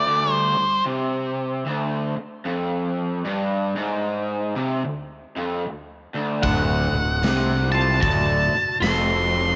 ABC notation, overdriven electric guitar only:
X:1
M:4/4
L:1/8
Q:"Swing" 1/4=75
K:Dmix
V:1 name="Overdriven electric guitar" clef=bass
D,, D,, C,2 D,, z =F,,2 | G,, ^G,,2 C, D,, =F,, D,, D,, | D,, D,, C,2 D,, z =F,,2 |]